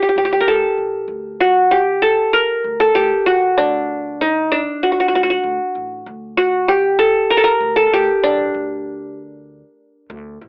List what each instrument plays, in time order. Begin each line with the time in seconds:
Already playing: qanun A4
0.02 qanun G4
0.09 qanun G4
0.16 upright bass D2, qanun G4
0.25 qanun G4
0.33 qanun G4
0.40 qanun A#4
0.47 upright bass D2, qanun A4
0.78 upright bass A1
1.08 upright bass D2
1.40 qanun F#4
1.71 qanun G4
2.02 qanun A4
2.33 qanun A#4
2.64 upright bass D2
2.80 qanun A4
2.95 upright bass D2, qanun G4
3.26 upright bass A1, qanun F#4
3.58 upright bass D2, qanun D4
4.21 qanun D#4
4.51 qanun D4
4.83 qanun F#4
4.92 qanun F#4
5.00 qanun F#4
5.08 qanun F#4
5.12 upright bass D2, qanun F#4
5.23 qanun F#4
5.30 qanun F#4
5.43 upright bass D2
5.75 upright bass A1
6.06 upright bass D2
6.37 qanun F#4
6.68 qanun G4
6.99 qanun A4
7.31 qanun A#4
7.37 qanun A4
7.44 qanun A#4
7.61 upright bass D2
7.76 qanun A4
7.92 upright bass D2, qanun G4
8.23 upright bass A1, qanun D4
8.54 upright bass D2
10.10 upright bass D2
10.41 upright bass A1